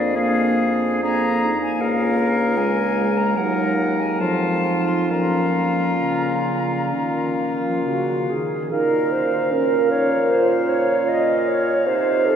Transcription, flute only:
Already playing: D5
0.16 F5
1.03 A#5
1.62 G#5
1.81 F5
2.58 G#5
3.17 A#5
3.37 F#5
4.00 G#5
4.20 A5
4.88 C6
5.10 A#5
7.85 F#4
8.30 G#4
8.72 A#4
9.12 C5
9.52 A#4
9.92 C#5
10.30 C5
10.69 C#5
11.08 D#5
11.48 C#5
11.87 C5
12.26 A4

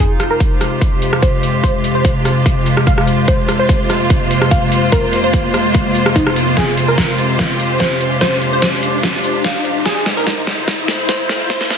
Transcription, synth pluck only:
0.00 G#4
0.31 A#4
1.22 C5
1.63 C5
1.95 C5
2.87 F5
3.28 C5
3.59 C5
4.51 F5
4.92 A#4
5.24 C5
6.16 D#4
6.57 G#4
6.88 A#4
7.80 C5
8.21 C5
8.53 C5
9.44 F5
9.85 G#4
10.17 A#4
11.09 C5
11.50 C5

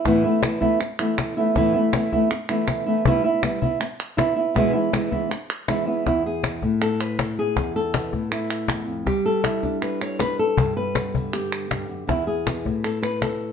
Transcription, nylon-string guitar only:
0.05 E2 A2 E3 A3 B3 E4
0.24 E3 A3 B3 E4
0.42 E3 B3 E4
0.61 E3 A3 B3 E4
0.80 muted nylon-string guitar stroke
0.99 E3 A3 B3 E4
1.37 E3 A3 B3 E4
1.55 E2 A2 E3 A3 B3 E4
1.74 E3 A3 B3 E4
1.93 E3 A3 B3 E4
2.13 E3 A3 B3 E4
2.30 muted nylon-string guitar stroke
2.49 E3 A3 B3 E4
2.86 E3 A3 B3 E4
3.05 G3 B3 E4
3.24 B3 E4
3.42 G3 B3 E4
3.62 B3 E4
3.80 muted nylon-string guitar stroke
4.17 B3 E4
4.36 B3 E4
4.54 E2 B2 E3 G#3 B3 E4
4.73 E3 G#3 B3 E4
4.92 E3 G#3 B3 E4
5.11 E3 G#3 B3 E4
5.31 muted nylon-string guitar stroke
5.68 E3 G#3 B3 E4
5.86 E3 G#3 B3 E4
6.06 E2 E4
6.26 G#4
6.63 A2
6.82 A4
7.01 B4
7.20 A4
7.39 G#4
7.57 E2
7.76 A4
7.95 B3
8.13 A2
8.32 E4
8.69 E2
8.87 F2
9.06 G3 G4
9.26 A4
9.45 E4
9.63 D4
9.82 B4
10.02 C#5
10.21 B4
10.39 A4
10.58 G2
10.77 B4
10.96 B3
11.14 D3
11.33 G4
11.71 G2
11.89 F#2
12.07 E2 E4
12.27 G#4
12.46 B3
12.64 A2
12.84 A4
13.03 B4
13.22 A4

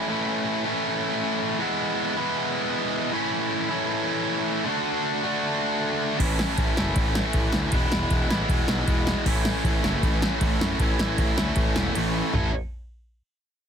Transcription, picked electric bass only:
6.20 A1
6.58 A1
6.78 F#1
6.96 A1
7.34 A1
7.54 D2
7.72 E1
7.92 E1
8.11 E1
8.31 A1
8.49 E1
8.68 B1
8.87 E1
9.26 A1
9.65 A1
9.84 F#1
10.03 A1
10.41 A1
10.61 F#2
10.80 A1
11.00 A1
11.18 A1
11.38 D2
11.57 A1
11.76 E1
11.96 A1
12.34 A1

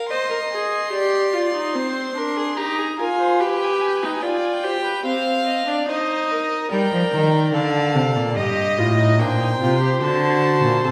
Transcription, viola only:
0.10 C5
0.30 A#4
0.51 G#4
0.92 G4
1.33 F4
1.54 D#4
1.75 C4
2.15 D4
2.57 D#4
2.99 F4
3.40 G4
4.02 D#4
4.23 F4
4.64 G4
5.05 C4
5.67 D4
5.88 D#4
6.71 A#4
7.54 A4
8.37 G4
8.78 F4
8.98 D#4
9.19 D4
9.40 D#4
9.60 F4
9.81 G4
10.01 F#4
10.85 A4

